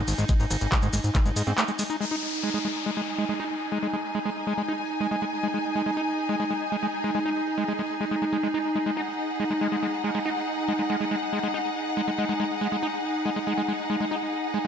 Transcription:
Already playing: ambient pad D#4, string section G#5
0.08 analog synth bass G#1, open hi-hat, ride, maracas
0.18 analog synth bass G#1, acid bass G#3, closed hi-hat, maracas
0.29 acid bass G#3, kick, closed hi-hat, maracas
0.40 analog synth bass G#1, acid bass D#4, open hi-hat, maracas
0.51 analog synth bass G#1, open hi-hat, ride, maracas
0.61 analog synth bass G#1, closed hi-hat, maracas
0.72 acid bass G#3, kick, clap, closed hi-hat, maracas
0.82 analog synth bass G#1, acid bass G#3, closed hi-hat, maracas
0.93 analog synth bass G#1, acid bass G#3, open hi-hat, ride, maracas
1.04 analog synth bass G#1, closed hi-hat, maracas
1.15 acid bass G#3, kick, clap, closed hi-hat, maracas
1.26 analog synth bass G#1, acid bass G#3, closed hi-hat, maracas
1.36 analog synth bass G#2, open hi-hat, ride, maracas
1.47 analog synth bass G#2, acid bass C4, closed hi-hat, maracas
1.58 acid bass A3, clap, closed hi-hat, maracas
1.68 acid bass G#3, closed hi-hat, maracas
1.79 acid bass G#3, open hi-hat, ride, maracas
1.90 acid bass D#4, closed hi-hat, maracas
2.00 acid bass G#3, string section D#4, ambient pad D#4, downlifter
2.11 acid bass D#4
2.33 string section G#4
2.43 acid bass G#3
2.54 acid bass G#3
2.65 acid bass G#3
2.86 acid bass G#3
2.93 acid bass G#3, string section G#5
3.18 acid bass G#3
3.29 acid bass G#3
3.40 acid bass D#4
3.72 acid bass G#3
3.83 acid bass G#3
3.93 acid bass G#3
4.15 acid bass G#3
4.26 acid bass G#3
4.47 acid bass G#3
4.58 acid bass G#3
4.68 acid bass D#4
5.01 acid bass G#3
5.11 acid bass G#3
5.22 acid bass G#3
5.43 acid bass G#3
5.54 acid bass G#3
5.76 acid bass G#3
5.86 acid bass G#3
5.97 acid bass D#4
6.29 acid bass G#3
6.40 acid bass G#3
6.51 acid bass G#3
6.72 acid bass G#3
6.83 acid bass G#3
7.04 acid bass G#3
7.15 acid bass G#3
7.26 acid bass D#4
7.58 acid bass G#3
7.68 acid bass G#3
7.79 acid bass G#3
8.01 acid bass G#3
8.11 acid bass G#3
8.22 acid bass G#3
8.33 acid bass G#3
8.43 acid bass G#3
8.54 acid bass D#4
8.76 acid bass G#3
8.86 acid bass G#3, string section F#5
8.97 acid bass D#4
9.40 acid bass G#3
9.51 acid bass G#3
9.61 acid bass G#3
9.72 acid bass G#3
9.83 acid bass G#3
10.04 acid bass G#3
10.15 acid bass G#3
10.26 acid bass D#4
10.68 acid bass G#3
10.79 acid bass G#3
10.90 acid bass G#3
11.01 acid bass G#3
11.11 acid bass G#3
11.33 acid bass G#3
11.43 acid bass G#3
11.54 acid bass D#4
11.97 acid bass G#3
12.08 acid bass G#3
12.18 acid bass G#3
12.29 acid bass G#3
12.40 acid bass G#3
12.61 acid bass G#3
12.72 acid bass G#3
12.83 acid bass D#4
13.26 acid bass G#3
13.36 acid bass G#3
13.47 acid bass G#3
13.58 acid bass G#3
13.68 acid bass G#3
13.90 acid bass G#3
14.01 acid bass G#3
14.11 acid bass D#4
14.54 acid bass G#3

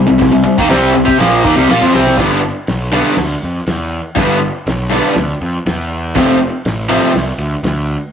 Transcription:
0.07 picked electric bass C2, overdriven electric guitar C3 G3
0.18 picked electric bass C2, overdriven electric guitar C3 G3, kick, snare, crash
0.31 picked electric bass C2, overdriven electric guitar C3 G3
0.44 picked electric bass C2, overdriven electric guitar C3 G3
0.58 picked electric bass D#2, overdriven electric guitar D#3 A#3, kick
0.69 picked electric bass C2, overdriven electric guitar C3 G3 C4, snare, crash
0.94 picked electric bass C2, overdriven electric guitar C3 G3
1.05 picked electric bass C3, overdriven electric guitar C4 G4, kick
1.18 picked electric bass A#1, overdriven electric guitar A#2 F3 A#3, snare, crash
1.44 picked electric bass D#2, overdriven electric guitar D#3 A#3, kick
1.56 picked electric bass C2, overdriven electric guitar C3 G3
1.69 picked electric bass A#2, overdriven electric guitar A#3 F4, snare, crash
1.81 picked electric bass F2, overdriven electric guitar F3 C4
1.94 picked electric bass C2, overdriven electric guitar C3 G3 C4, snare
2.07 snare
2.16 picked electric bass G1, overdriven electric guitar G2 D3 G3 B3 D4, kick, crash
2.20 snare
2.67 picked electric bass B1, snare, crash
2.92 overdriven electric guitar G2 D3 G3 B3 D4
3.16 picked electric bass D2, snare, crash
3.43 picked electric bass F2
3.67 picked electric bass E2, snare, crash
4.15 picked electric bass G1, overdriven electric guitar G2 D3 G3 B3 D4, kick, snare, crash
4.66 picked electric bass B1, snare, crash
4.90 overdriven electric guitar G2 D3 G3 B3 D4
5.15 picked electric bass D2, snare, crash
5.41 picked electric bass F2
5.66 picked electric bass E2, snare, crash
6.16 picked electric bass F1, overdriven electric guitar F2 C3 F3 A3 C4, kick, snare, crash
6.65 picked electric bass A1, snare, crash
6.90 overdriven electric guitar F2 C3 F3 A3 C4
7.14 picked electric bass C2, snare, crash
7.38 picked electric bass D2
7.63 picked electric bass D2, snare, crash

